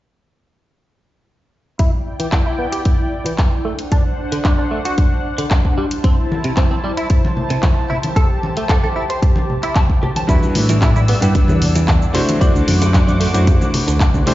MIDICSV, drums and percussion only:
0, 0, Header, 1, 2, 480
1, 0, Start_track
1, 0, Key_signature, 1, "minor"
1, 0, Tempo, 530973
1, 1621, Time_signature, 4, 2, 24, 8
1, 12964, End_track
2, 0, Start_track
2, 0, Title_t, "Drums"
2, 1620, Note_on_c, 9, 42, 50
2, 1622, Note_on_c, 9, 36, 105
2, 1711, Note_off_c, 9, 42, 0
2, 1712, Note_off_c, 9, 36, 0
2, 1986, Note_on_c, 9, 42, 59
2, 2077, Note_off_c, 9, 42, 0
2, 2098, Note_on_c, 9, 39, 105
2, 2100, Note_on_c, 9, 42, 48
2, 2102, Note_on_c, 9, 36, 100
2, 2188, Note_off_c, 9, 39, 0
2, 2191, Note_off_c, 9, 42, 0
2, 2192, Note_off_c, 9, 36, 0
2, 2464, Note_on_c, 9, 42, 62
2, 2554, Note_off_c, 9, 42, 0
2, 2579, Note_on_c, 9, 42, 48
2, 2582, Note_on_c, 9, 36, 104
2, 2670, Note_off_c, 9, 42, 0
2, 2672, Note_off_c, 9, 36, 0
2, 2945, Note_on_c, 9, 42, 60
2, 3036, Note_off_c, 9, 42, 0
2, 3058, Note_on_c, 9, 39, 108
2, 3061, Note_on_c, 9, 36, 102
2, 3061, Note_on_c, 9, 42, 47
2, 3149, Note_off_c, 9, 39, 0
2, 3151, Note_off_c, 9, 42, 0
2, 3152, Note_off_c, 9, 36, 0
2, 3424, Note_on_c, 9, 42, 63
2, 3514, Note_off_c, 9, 42, 0
2, 3541, Note_on_c, 9, 42, 49
2, 3542, Note_on_c, 9, 36, 112
2, 3631, Note_off_c, 9, 42, 0
2, 3632, Note_off_c, 9, 36, 0
2, 3907, Note_on_c, 9, 42, 60
2, 3997, Note_off_c, 9, 42, 0
2, 4019, Note_on_c, 9, 39, 109
2, 4022, Note_on_c, 9, 36, 111
2, 4022, Note_on_c, 9, 42, 47
2, 4110, Note_off_c, 9, 39, 0
2, 4112, Note_off_c, 9, 36, 0
2, 4112, Note_off_c, 9, 42, 0
2, 4387, Note_on_c, 9, 42, 60
2, 4478, Note_off_c, 9, 42, 0
2, 4500, Note_on_c, 9, 42, 46
2, 4502, Note_on_c, 9, 36, 107
2, 4591, Note_off_c, 9, 42, 0
2, 4593, Note_off_c, 9, 36, 0
2, 4867, Note_on_c, 9, 42, 61
2, 4957, Note_off_c, 9, 42, 0
2, 4977, Note_on_c, 9, 39, 112
2, 4980, Note_on_c, 9, 42, 47
2, 4981, Note_on_c, 9, 36, 114
2, 5068, Note_off_c, 9, 39, 0
2, 5070, Note_off_c, 9, 42, 0
2, 5072, Note_off_c, 9, 36, 0
2, 5107, Note_on_c, 9, 36, 54
2, 5197, Note_off_c, 9, 36, 0
2, 5344, Note_on_c, 9, 42, 61
2, 5434, Note_off_c, 9, 42, 0
2, 5461, Note_on_c, 9, 42, 47
2, 5462, Note_on_c, 9, 36, 113
2, 5551, Note_off_c, 9, 42, 0
2, 5552, Note_off_c, 9, 36, 0
2, 5710, Note_on_c, 9, 63, 94
2, 5801, Note_off_c, 9, 63, 0
2, 5824, Note_on_c, 9, 42, 58
2, 5914, Note_off_c, 9, 42, 0
2, 5936, Note_on_c, 9, 39, 106
2, 5939, Note_on_c, 9, 42, 47
2, 5940, Note_on_c, 9, 36, 113
2, 6027, Note_off_c, 9, 39, 0
2, 6029, Note_off_c, 9, 42, 0
2, 6030, Note_off_c, 9, 36, 0
2, 6066, Note_on_c, 9, 63, 59
2, 6157, Note_off_c, 9, 63, 0
2, 6305, Note_on_c, 9, 42, 59
2, 6395, Note_off_c, 9, 42, 0
2, 6417, Note_on_c, 9, 42, 46
2, 6420, Note_on_c, 9, 36, 114
2, 6508, Note_off_c, 9, 42, 0
2, 6510, Note_off_c, 9, 36, 0
2, 6551, Note_on_c, 9, 63, 92
2, 6642, Note_off_c, 9, 63, 0
2, 6661, Note_on_c, 9, 64, 73
2, 6752, Note_off_c, 9, 64, 0
2, 6783, Note_on_c, 9, 42, 58
2, 6873, Note_off_c, 9, 42, 0
2, 6895, Note_on_c, 9, 39, 111
2, 6897, Note_on_c, 9, 42, 45
2, 6899, Note_on_c, 9, 36, 110
2, 6905, Note_on_c, 9, 63, 64
2, 6985, Note_off_c, 9, 39, 0
2, 6987, Note_off_c, 9, 42, 0
2, 6989, Note_off_c, 9, 36, 0
2, 6996, Note_off_c, 9, 63, 0
2, 7145, Note_on_c, 9, 64, 68
2, 7236, Note_off_c, 9, 64, 0
2, 7263, Note_on_c, 9, 42, 60
2, 7271, Note_on_c, 9, 63, 86
2, 7353, Note_off_c, 9, 42, 0
2, 7362, Note_off_c, 9, 63, 0
2, 7379, Note_on_c, 9, 36, 118
2, 7382, Note_on_c, 9, 42, 47
2, 7469, Note_off_c, 9, 36, 0
2, 7472, Note_off_c, 9, 42, 0
2, 7623, Note_on_c, 9, 63, 91
2, 7714, Note_off_c, 9, 63, 0
2, 7745, Note_on_c, 9, 42, 58
2, 7836, Note_off_c, 9, 42, 0
2, 7857, Note_on_c, 9, 39, 109
2, 7860, Note_on_c, 9, 36, 112
2, 7860, Note_on_c, 9, 42, 46
2, 7948, Note_off_c, 9, 39, 0
2, 7950, Note_off_c, 9, 36, 0
2, 7950, Note_off_c, 9, 42, 0
2, 7989, Note_on_c, 9, 63, 61
2, 8079, Note_off_c, 9, 63, 0
2, 8226, Note_on_c, 9, 42, 59
2, 8317, Note_off_c, 9, 42, 0
2, 8339, Note_on_c, 9, 36, 113
2, 8340, Note_on_c, 9, 42, 46
2, 8430, Note_off_c, 9, 36, 0
2, 8431, Note_off_c, 9, 42, 0
2, 8459, Note_on_c, 9, 63, 86
2, 8549, Note_off_c, 9, 63, 0
2, 8587, Note_on_c, 9, 64, 66
2, 8677, Note_off_c, 9, 64, 0
2, 8706, Note_on_c, 9, 42, 59
2, 8797, Note_off_c, 9, 42, 0
2, 8817, Note_on_c, 9, 39, 106
2, 8820, Note_on_c, 9, 36, 113
2, 8820, Note_on_c, 9, 42, 44
2, 8824, Note_on_c, 9, 63, 65
2, 8908, Note_off_c, 9, 39, 0
2, 8910, Note_off_c, 9, 42, 0
2, 8911, Note_off_c, 9, 36, 0
2, 8914, Note_off_c, 9, 63, 0
2, 8946, Note_on_c, 9, 36, 58
2, 9036, Note_off_c, 9, 36, 0
2, 9065, Note_on_c, 9, 64, 75
2, 9155, Note_off_c, 9, 64, 0
2, 9186, Note_on_c, 9, 42, 59
2, 9186, Note_on_c, 9, 63, 88
2, 9277, Note_off_c, 9, 42, 0
2, 9277, Note_off_c, 9, 63, 0
2, 9300, Note_on_c, 9, 36, 111
2, 9301, Note_on_c, 9, 42, 53
2, 9303, Note_on_c, 9, 82, 53
2, 9390, Note_off_c, 9, 36, 0
2, 9392, Note_off_c, 9, 42, 0
2, 9393, Note_off_c, 9, 82, 0
2, 9427, Note_on_c, 9, 82, 32
2, 9429, Note_on_c, 9, 60, 53
2, 9517, Note_off_c, 9, 82, 0
2, 9519, Note_off_c, 9, 60, 0
2, 9539, Note_on_c, 9, 46, 98
2, 9541, Note_on_c, 9, 63, 86
2, 9629, Note_off_c, 9, 46, 0
2, 9631, Note_off_c, 9, 63, 0
2, 9665, Note_on_c, 9, 42, 65
2, 9666, Note_on_c, 9, 82, 64
2, 9755, Note_off_c, 9, 42, 0
2, 9756, Note_off_c, 9, 82, 0
2, 9779, Note_on_c, 9, 39, 118
2, 9780, Note_on_c, 9, 36, 107
2, 9781, Note_on_c, 9, 42, 51
2, 9782, Note_on_c, 9, 82, 52
2, 9788, Note_on_c, 9, 60, 80
2, 9869, Note_off_c, 9, 39, 0
2, 9871, Note_off_c, 9, 36, 0
2, 9871, Note_off_c, 9, 42, 0
2, 9873, Note_off_c, 9, 82, 0
2, 9878, Note_off_c, 9, 60, 0
2, 9906, Note_on_c, 9, 63, 68
2, 9909, Note_on_c, 9, 82, 32
2, 9997, Note_off_c, 9, 63, 0
2, 9999, Note_off_c, 9, 82, 0
2, 10019, Note_on_c, 9, 46, 87
2, 10020, Note_on_c, 9, 60, 52
2, 10110, Note_off_c, 9, 46, 0
2, 10110, Note_off_c, 9, 60, 0
2, 10145, Note_on_c, 9, 42, 68
2, 10146, Note_on_c, 9, 82, 67
2, 10235, Note_off_c, 9, 42, 0
2, 10237, Note_off_c, 9, 82, 0
2, 10260, Note_on_c, 9, 42, 52
2, 10261, Note_on_c, 9, 36, 111
2, 10262, Note_on_c, 9, 82, 53
2, 10351, Note_off_c, 9, 42, 0
2, 10352, Note_off_c, 9, 36, 0
2, 10352, Note_off_c, 9, 82, 0
2, 10379, Note_on_c, 9, 63, 91
2, 10389, Note_on_c, 9, 82, 32
2, 10390, Note_on_c, 9, 60, 71
2, 10470, Note_off_c, 9, 63, 0
2, 10479, Note_off_c, 9, 82, 0
2, 10480, Note_off_c, 9, 60, 0
2, 10502, Note_on_c, 9, 46, 100
2, 10505, Note_on_c, 9, 64, 73
2, 10592, Note_off_c, 9, 46, 0
2, 10596, Note_off_c, 9, 64, 0
2, 10626, Note_on_c, 9, 42, 66
2, 10628, Note_on_c, 9, 82, 63
2, 10630, Note_on_c, 9, 60, 47
2, 10717, Note_off_c, 9, 42, 0
2, 10718, Note_off_c, 9, 82, 0
2, 10721, Note_off_c, 9, 60, 0
2, 10739, Note_on_c, 9, 39, 115
2, 10741, Note_on_c, 9, 42, 50
2, 10742, Note_on_c, 9, 36, 110
2, 10743, Note_on_c, 9, 82, 52
2, 10750, Note_on_c, 9, 63, 59
2, 10830, Note_off_c, 9, 39, 0
2, 10832, Note_off_c, 9, 42, 0
2, 10833, Note_off_c, 9, 36, 0
2, 10833, Note_off_c, 9, 82, 0
2, 10840, Note_off_c, 9, 63, 0
2, 10867, Note_on_c, 9, 82, 32
2, 10957, Note_off_c, 9, 82, 0
2, 10980, Note_on_c, 9, 46, 91
2, 10981, Note_on_c, 9, 60, 84
2, 10984, Note_on_c, 9, 64, 71
2, 11071, Note_off_c, 9, 46, 0
2, 11071, Note_off_c, 9, 60, 0
2, 11075, Note_off_c, 9, 64, 0
2, 11108, Note_on_c, 9, 42, 65
2, 11109, Note_on_c, 9, 82, 65
2, 11115, Note_on_c, 9, 63, 91
2, 11198, Note_off_c, 9, 42, 0
2, 11199, Note_off_c, 9, 82, 0
2, 11205, Note_off_c, 9, 63, 0
2, 11221, Note_on_c, 9, 36, 115
2, 11223, Note_on_c, 9, 42, 51
2, 11224, Note_on_c, 9, 82, 54
2, 11233, Note_on_c, 9, 60, 49
2, 11312, Note_off_c, 9, 36, 0
2, 11313, Note_off_c, 9, 42, 0
2, 11314, Note_off_c, 9, 82, 0
2, 11324, Note_off_c, 9, 60, 0
2, 11350, Note_on_c, 9, 82, 30
2, 11441, Note_off_c, 9, 82, 0
2, 11461, Note_on_c, 9, 46, 103
2, 11467, Note_on_c, 9, 63, 88
2, 11552, Note_off_c, 9, 46, 0
2, 11557, Note_off_c, 9, 63, 0
2, 11587, Note_on_c, 9, 42, 65
2, 11588, Note_on_c, 9, 82, 60
2, 11590, Note_on_c, 9, 60, 75
2, 11677, Note_off_c, 9, 42, 0
2, 11678, Note_off_c, 9, 82, 0
2, 11681, Note_off_c, 9, 60, 0
2, 11699, Note_on_c, 9, 39, 118
2, 11701, Note_on_c, 9, 36, 111
2, 11701, Note_on_c, 9, 42, 50
2, 11703, Note_on_c, 9, 82, 51
2, 11790, Note_off_c, 9, 39, 0
2, 11791, Note_off_c, 9, 36, 0
2, 11792, Note_off_c, 9, 42, 0
2, 11793, Note_off_c, 9, 82, 0
2, 11828, Note_on_c, 9, 82, 31
2, 11831, Note_on_c, 9, 63, 69
2, 11834, Note_on_c, 9, 60, 49
2, 11919, Note_off_c, 9, 82, 0
2, 11921, Note_off_c, 9, 63, 0
2, 11925, Note_off_c, 9, 60, 0
2, 11939, Note_on_c, 9, 46, 90
2, 12030, Note_off_c, 9, 46, 0
2, 12064, Note_on_c, 9, 42, 65
2, 12065, Note_on_c, 9, 82, 63
2, 12154, Note_off_c, 9, 42, 0
2, 12156, Note_off_c, 9, 82, 0
2, 12180, Note_on_c, 9, 42, 50
2, 12181, Note_on_c, 9, 36, 118
2, 12182, Note_on_c, 9, 82, 52
2, 12187, Note_on_c, 9, 60, 77
2, 12271, Note_off_c, 9, 36, 0
2, 12271, Note_off_c, 9, 42, 0
2, 12272, Note_off_c, 9, 82, 0
2, 12278, Note_off_c, 9, 60, 0
2, 12305, Note_on_c, 9, 63, 87
2, 12307, Note_on_c, 9, 82, 31
2, 12395, Note_off_c, 9, 63, 0
2, 12398, Note_off_c, 9, 82, 0
2, 12420, Note_on_c, 9, 46, 105
2, 12422, Note_on_c, 9, 64, 83
2, 12425, Note_on_c, 9, 60, 55
2, 12511, Note_off_c, 9, 46, 0
2, 12513, Note_off_c, 9, 64, 0
2, 12516, Note_off_c, 9, 60, 0
2, 12547, Note_on_c, 9, 42, 64
2, 12548, Note_on_c, 9, 82, 61
2, 12637, Note_off_c, 9, 42, 0
2, 12638, Note_off_c, 9, 82, 0
2, 12659, Note_on_c, 9, 39, 112
2, 12660, Note_on_c, 9, 36, 116
2, 12661, Note_on_c, 9, 42, 48
2, 12662, Note_on_c, 9, 82, 50
2, 12664, Note_on_c, 9, 63, 60
2, 12749, Note_off_c, 9, 39, 0
2, 12750, Note_off_c, 9, 36, 0
2, 12751, Note_off_c, 9, 42, 0
2, 12753, Note_off_c, 9, 82, 0
2, 12754, Note_off_c, 9, 63, 0
2, 12785, Note_on_c, 9, 36, 58
2, 12786, Note_on_c, 9, 82, 31
2, 12795, Note_on_c, 9, 60, 71
2, 12875, Note_off_c, 9, 36, 0
2, 12877, Note_off_c, 9, 82, 0
2, 12885, Note_off_c, 9, 60, 0
2, 12899, Note_on_c, 9, 46, 96
2, 12906, Note_on_c, 9, 64, 74
2, 12964, Note_off_c, 9, 46, 0
2, 12964, Note_off_c, 9, 64, 0
2, 12964, End_track
0, 0, End_of_file